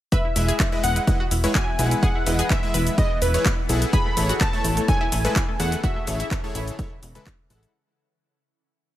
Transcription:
0.12 ambient pad E3 B3 E4, synth pluck B4, synth bell E5, digital synth lead E5, kick, closed hi-hat, shaker
0.25 synth pluck E4
0.36 analog synth bass E1, supersaw synth G#3 E4 B4 E5, synth pluck E4, open hi-hat, shaker
0.48 synth pluck G#4, closed hi-hat, shaker
0.60 synth pluck E4, kick, clap, closed hi-hat, shaker
0.72 supersaw synth G#3 E4 B4 D#5, synth pluck E4
0.83 analog synth bass E1, synth bell F#5, digital synth lead F#5, open hi-hat, shaker
0.96 synth pluck E4, closed hi-hat, shaker
1.07 supersaw synth G#3 E4 B4 D#5, synth pluck E4, kick, closed hi-hat, shaker
1.20 synth pluck F#4
1.31 analog synth bass E1, synth pluck E4, open hi-hat, shaker
1.44 supersaw synth G#3 E4 B4 C#5, synth pluck E4, closed hi-hat, shaker
1.55 synth pluck F#4, synth bell G#5, digital synth lead G#5, kick, clap, closed hi-hat, shaker
1.68 synth pluck E4
1.79 analog synth bass B1, supersaw synth G#3 E4 B4 F#5, synth pluck E4, open hi-hat, shaker
1.91 synth pluck E4, closed hi-hat, shaker
2.03 synth pluck G#4, synth bell F#5, digital synth lead F#5, kick, closed hi-hat, shaker
2.15 synth pluck E4
2.26 analog synth bass E1, supersaw synth G#3 E4 B4 D#5, synth pluck E4, open hi-hat, shaker
2.39 synth pluck G#4, closed hi-hat, shaker
2.50 synth pluck E4, synth bell E5, digital synth lead E5, kick, clap, closed hi-hat, shaker
2.63 supersaw synth G#3 E4 B4 E5, synth pluck E4
2.74 analog synth bass E1, synth pluck B4, open hi-hat, shaker
2.87 closed hi-hat, shaker
2.98 supersaw synth G#3 E4 B4 D#5, digital synth lead D#5, synth bell D#5, kick, closed hi-hat, shaker
3.22 analog synth bass E1, synth bell B4, digital synth lead B4, open hi-hat, shaker
3.34 supersaw synth G#3 E4 B4 C#5, closed hi-hat, shaker
3.45 kick, clap, closed hi-hat, shaker
3.69 analog synth bass B1, supersaw synth E4 G#4 A4 F#5, open hi-hat, shaker
3.82 closed hi-hat, shaker
3.93 ambient pad C#3 E3, synth pluck G#4, synth bell B5, digital synth lead B5, kick, closed hi-hat, shaker
4.06 synth pluck A3
4.17 analog synth bass A1, synth pluck A3, supersaw synth E4 G#4 A4 C#5, open hi-hat, shaker
4.29 synth pluck F#4, closed hi-hat, shaker
4.41 synth pluck A3, digital synth lead A5, synth bell A5, kick, clap, closed hi-hat, shaker
4.53 supersaw synth A3 E4 A4 C#5, synth pluck A3
4.64 analog synth bass A1, open hi-hat, shaker
4.77 synth pluck A3, closed hi-hat, shaker
4.88 supersaw synth G#3 E4 A4 C#5, synth pluck A3, digital synth lead G#5, synth bell G#5, kick, closed hi-hat, shaker
5.01 synth pluck E4
5.12 analog synth bass A1, synth pluck A3, open hi-hat, shaker
5.25 supersaw synth G#3 E4 A4 B4, synth pluck A3, closed hi-hat, shaker
5.36 synth pluck E4, kick, clap, closed hi-hat, shaker
5.49 synth pluck A3
5.60 analog synth bass E2, synth pluck A3, supersaw synth E4 G#4 A4 F#5, digital synth lead F#5, synth bell F#5, open hi-hat, shaker
5.72 synth pluck A3, closed hi-hat, shaker
5.84 synth pluck F#4, digital synth lead E5, synth bell E5, kick, closed hi-hat, shaker
5.96 synth pluck A3
6.07 analog synth bass A1, synth pluck A3, supersaw synth E4 G#4 A4 C#5, open hi-hat, shaker
6.20 synth pluck E4, closed hi-hat, shaker
6.31 synth pluck A3, kick, clap, closed hi-hat, shaker
6.44 synth pluck A3, supersaw synth E4 G#4 A4 C#5
6.55 analog synth bass A1, synth pluck E4, open hi-hat, shaker
6.68 closed hi-hat, shaker
6.79 supersaw synth G#3 E4 A4, kick, closed hi-hat, shaker
7.03 analog synth bass E1, open hi-hat, shaker
7.15 supersaw synth G#3 E4 A4 B4, closed hi-hat, shaker
7.26 kick, clap, closed hi-hat, shaker
7.50 analog synth bass A1, supersaw synth G#3 E4 A4 F#5, open hi-hat, shaker
7.63 closed hi-hat, shaker

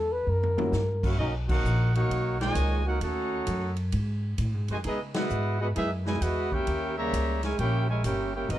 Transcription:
Already playing: upright bass E2, trombone A4
0.12 trombone B4
0.27 upright bass F#2, trombone A#4
0.43 floor tom
0.57 grand piano G3 A#3 C#4 E4 F#4, floor tom
0.72 upright bass G2, snare, hi-hat pedal
1.03 trombone section A#3 C#4 F#4, trumpet section E4 A#4 C#5 F#5, kick, crash
1.18 upright bass B1, trombone section F#3 A#3 D#4, trumpet section C#4 F#4 A#4 D#5
1.48 trombone section A#3 D#4 F#4, trumpet section D#4 A#4 C#5 F#5, kick, crash
1.64 upright bass A#1, hi-hat pedal
1.94 trombone section A#3 D#4 F#4, trumpet section D#4 A#4 C#5 F#5, ride
2.09 upright bass B1, ride
2.39 trombone section A#2 D#3 G#3, trumpet section F#4 C#5 D#5 G#5, snare, ride
2.55 upright bass C#2, hi-hat pedal, ride
2.85 trombone section A#3 D#4 F#4, trumpet section D#4 A#4 C#5 F#5
3.01 upright bass D#2, trombone section A3 C#4 F#4, trumpet section D#4 A4 C#5 F#5, ride
3.47 upright bass F#2, hi-hat pedal, ride
3.76 ride
3.92 upright bass G#2, ride
4.38 upright bass A2, hi-hat pedal, ride
4.54 upright bass G#2
4.68 upright bass F#2, trombone section C3 D#3 G#3, trumpet section F#4 C5 D#5 G#5, ride
4.84 upright bass C#3, trombone section G#3 B3 D#4, trumpet section B3 E4 G#4 D#5, ride
5.14 trombone section G#3 B3 F#4, trumpet section E4 B4 D#5 F#5, snare, ride
5.30 upright bass G#2, hi-hat pedal
5.60 trombone section G#3 B3 F#4, trumpet section E4 B4 D#5 F#5
5.75 upright bass F#2, trombone section G#3 B3 E4, trumpet section B3 D#4 G#4 E5, ride
6.05 trombone section B2 E3 G#3, trumpet section E4 B4 D#5 G#5, snare
6.19 upright bass E2, trombone section G#3 B3 F#4, trumpet section E4 B4 D#5 F#5, hi-hat pedal, ride
6.51 trombone section A#3 C#4 G4, trumpet section E4 A#4 C#5 G5, kick
6.67 upright bass D#2, ride
6.96 trombone section C#3 G3 A#3, trumpet section G4 C#5 E5 A#5
7.12 upright bass C#2, hi-hat pedal, ride
7.43 trombone section G#3, trumpet section E4 A#4 C#5 G#5, snare, ride
7.59 upright bass A#1, trombone section A#3 C#4 G4, trumpet section E4 A#4 C#5 G5, ride
7.89 trombone section G#3, trumpet section E4 A#4 C#5 G#5
8.04 upright bass G1, trombone section A#3 C#4 G4, trumpet section E4 A#4 C#5 G5, hi-hat pedal, ride
8.35 trombone section A#3 C#4 G4, trumpet section E4 A#4 C#5 G5
8.49 upright bass G#1, trombone section F#3 B3 D#4, trumpet section B3 F#4 A#4 D#5, ride

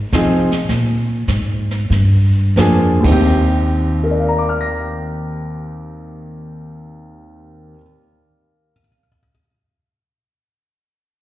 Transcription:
Already playing: upright bass G#2
0.12 upright bass C3, grand piano F3 C4 D#4 G#4, kick, snare, hi-hat pedal
0.51 snare
0.68 upright bass A#2, brush sweep, kick, snare
1.28 upright bass G#2, kick, snare, hi-hat pedal
1.71 snare
1.90 upright bass G2, brush sweep, kick, snare
2.56 upright bass F2, grand piano F3 A#3 D4 G#4, kick, snare, hi-hat pedal
3.00 grand piano D#2 D#3
3.04 upright bass D#2, grand piano C4, kick, crash
3.12 grand piano G4
4.04 grand piano A#4
4.11 grand piano D5
4.20 grand piano F5
4.28 grand piano A#5
4.38 grand piano D6
4.49 grand piano F6
4.61 grand piano A#6

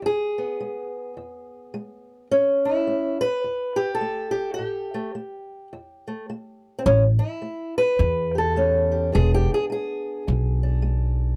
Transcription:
0.02 steel-string acoustic guitar E2 G#4
0.38 steel-string acoustic guitar B3
0.60 steel-string acoustic guitar G#3
1.17 steel-string acoustic guitar E2
1.74 steel-string acoustic guitar G#3
2.31 steel-string acoustic guitar A2 C#4
2.65 steel-string acoustic guitar E4
2.87 steel-string acoustic guitar A3
3.21 steel-string acoustic guitar B4
3.44 steel-string acoustic guitar E2
3.76 steel-string acoustic guitar G4
3.95 steel-string acoustic guitar A4
4.01 steel-string acoustic guitar A3
4.31 steel-string acoustic guitar G4
4.54 steel-string acoustic guitar G4
4.59 steel-string acoustic guitar A2
4.94 steel-string acoustic guitar A3
5.15 steel-string acoustic guitar A3
5.73 steel-string acoustic guitar E2
6.08 steel-string acoustic guitar A3
6.30 steel-string acoustic guitar A3
6.79 steel-string acoustic guitar C4
6.86 upright bass A1, steel-string acoustic guitar A2 C#4
7.19 steel-string acoustic guitar E4
7.42 steel-string acoustic guitar A3
7.78 steel-string acoustic guitar B4
7.99 steel-string acoustic guitar E2, upright bass E2
8.35 steel-string acoustic guitar G4 A4
8.56 steel-string acoustic guitar A3 C#4
8.92 steel-string acoustic guitar G4
9.12 upright bass E1, steel-string acoustic guitar E2 G#3 B3 D4 G#4
9.34 steel-string acoustic guitar G4
9.54 steel-string acoustic guitar G#4
9.70 steel-string acoustic guitar G#3 G#4
10.27 upright bass B1, steel-string acoustic guitar E2
10.63 steel-string acoustic guitar D4
10.82 steel-string acoustic guitar G#3

